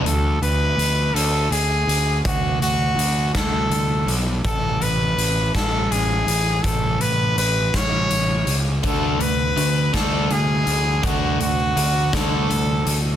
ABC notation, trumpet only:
X:1
M:6/8
L:1/8
Q:3/8=55
K:Dlyd
V:1 name="Trumpet"
A B2 A G2 | F F2 A2 z | A B2 A G2 | A B B c2 z |
A B2 A G2 | F F2 A2 z |]